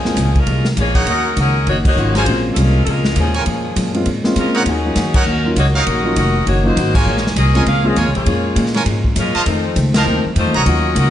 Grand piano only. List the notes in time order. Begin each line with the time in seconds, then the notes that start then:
0.05 G#3 A#3 C4 C#4 F4
1.97 F#3 A#3 C#4 D#4 F4
2.27 G#3 A#3 C4 C#4 F4
3.94 G#3 A#3 C4 C#4 F4
4.24 G#3 A#3 C4 C#4 F4
4.84 F#3 A#3 C#4 D#4 F4
5.44 F#3 A#3 C#4 D#4 F4
6.04 F#3 A#3 C#4 D#4 F4
6.64 F#3 A#3 C#4 D#4 F4
7.54 G#3 A#3 C4 C#4 F4
7.83 G#3 A#3 C4 C#4 F4
8.25 G#3 A#3 C#4 F4
10.66 F#3 A#3 C#4 D#4 F4